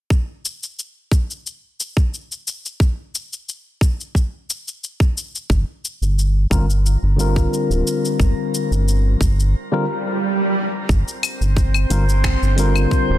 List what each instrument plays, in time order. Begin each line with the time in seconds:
0.10 kick, shaker
0.45 shaker
0.63 shaker
0.79 shaker
1.11 kick, shaker
1.31 shaker
1.46 shaker
1.80 shaker
1.97 kick, shaker
2.14 shaker
2.32 shaker
2.48 shaker
2.65 shaker
2.80 kick, shaker
3.15 shaker
3.33 shaker
3.49 shaker
3.81 kick, shaker
4.00 shaker
4.15 kick, shaker
4.50 shaker
4.68 shaker
4.84 shaker
5.00 kick, shaker
5.18 shaker
5.35 shaker
5.50 analog synth bass G1, kick, shaker
5.85 shaker
6.01 analog synth bass G1, shaker
6.19 shaker
6.50 analog synth bass G1, tine electric piano D3 G3 C4 F4 A#4, kick, shaker
6.70 shaker
6.86 shaker
7.02 analog synth bass G1
7.17 tine electric piano D3 G3 C4 F4 A#4, shaker
7.36 kick, shaker
7.54 shaker
7.70 analog synth bass D1, shaker
7.87 shaker
8.05 shaker
8.20 analog synth bass G1, kick, shaker
8.55 shaker
8.71 analog synth bass G1, shaker
8.88 shaker
9.21 analog synth bass G1, kick, shaker
9.40 shaker
9.54 swell
9.72 tine electric piano D3 G3 C4 F4 A#4
10.89 analog synth bass G1, synth texture C4 C5, kick, shaker
11.08 shaker
11.23 open hi-hat, claves, shaker
11.41 analog synth bass G1, shaker
11.57 kick, shaker
11.74 claves, shaker
11.89 analog synth bass G1, tine electric piano D3 G3 C4 F4 A#4, open hi-hat, shaker
12.09 shaker
12.24 finger snap, kick, claves, shaker
12.42 analog synth bass G1, shaker
12.55 tine electric piano D3 G3 C4 F4, open hi-hat, shaker
12.59 tine electric piano A#4
12.76 claves, shaker
12.91 kick, shaker
13.09 analog synth bass D1